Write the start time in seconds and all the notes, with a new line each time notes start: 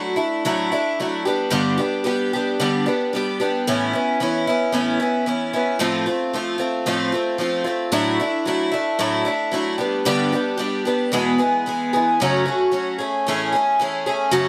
Already playing: F#3 A3 D4 E4
0.16 A3 D4 E4
0.45 A2 F#3 A3 D4 E4
0.72 A3 D4 E4
1.00 F#3 A3 D4 E4
1.25 G3 B3 D4 G4
1.50 G2 D3 G3 B3 D4 G4
1.78 G3 B3 D4 G4
2.04 G3 B3 D4 G4
2.33 G3 B3 D4 G4
2.60 G2 D3 G3 B3 D4 G4
2.86 G3 B3 D4 G4
3.13 G3 B3 D4 G4
3.40 G3 B3 D4 G4
3.67 A2 E3 B3 C#4 E4
3.93 B3 C#4 E4
4.20 E3 B3 C#4 E4
4.47 B3 C#4 E4
4.72 A2 E3 B3 C#4 E4
5.00 B3 C#4 E4
5.26 E3 B3 C#4 E4
5.53 B3 C#4 E4
5.79 A2 F3 A3 C4 F4
6.06 A3 C4 F4
6.33 F3 A3 C4 F4
6.58 A3 C4 F4
6.86 A2 F3 A3 C4 F4
7.12 A3 C4 F4
7.38 F3 A3 C4 F4
7.64 A3 C4 F4
7.92 A2 F#3 A3 D4 E4
8.20 A3 D4 E4
8.45 F#3 A3 D4 E4
8.72 A3 D4 E4
8.99 A2 F#3 A3 D4 E4
9.25 A3 D4 E4
9.52 F#3 A3 D4 E4
9.78 G3 B3 D4 G4
10.05 G2 D3 G3 B3 D4 G4
10.32 G3 B3 D4 G4
10.57 G3 B3 D4 G4
10.85 G3 B3 D4 G4
11.12 E2 B2 E3 G#3 B3 G#4
11.38 E3 G#3 B3 G#4
11.66 E3 G#3 B3 G#4
11.93 E3 G#3 B3 G#4
12.20 F#2 C#3 F#3 A3 C#4 F#4
12.45 F#3 A3 C#4 F#4
12.72 F#3 A3 C#4 F#4
12.98 A3 C#4 G#4
13.27 A2 E3 A3 C#4 G#4
13.52 A3 C#4 G#4
13.80 E3 A3 C#4 G#4
14.06 A3 C#4 G#4
14.31 F#2 C#3 F#3 A3 C#4 F#4